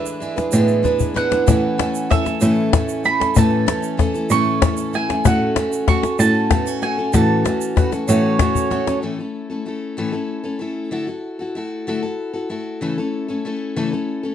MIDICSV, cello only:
0, 0, Header, 1, 2, 480
1, 0, Start_track
1, 0, Key_signature, 3, "major"
1, 0, Tempo, 630252
1, 1126, Time_signature, 6, 3, 24, 8
1, 10927, End_track
2, 0, Start_track
2, 0, Title_t, "Cello"
2, 0, Program_c, 0, 42
2, 409, Note_on_c, 0, 45, 102
2, 1096, Note_off_c, 0, 45, 0
2, 1128, Note_on_c, 0, 45, 83
2, 1354, Note_off_c, 0, 45, 0
2, 1844, Note_on_c, 0, 45, 96
2, 2532, Note_off_c, 0, 45, 0
2, 2563, Note_on_c, 0, 45, 91
2, 2791, Note_off_c, 0, 45, 0
2, 3279, Note_on_c, 0, 45, 91
2, 3969, Note_off_c, 0, 45, 0
2, 4002, Note_on_c, 0, 45, 85
2, 4229, Note_off_c, 0, 45, 0
2, 4720, Note_on_c, 0, 45, 97
2, 5409, Note_off_c, 0, 45, 0
2, 5439, Note_on_c, 0, 45, 94
2, 5667, Note_off_c, 0, 45, 0
2, 6163, Note_on_c, 0, 45, 93
2, 6851, Note_off_c, 0, 45, 0
2, 10927, End_track
0, 0, End_of_file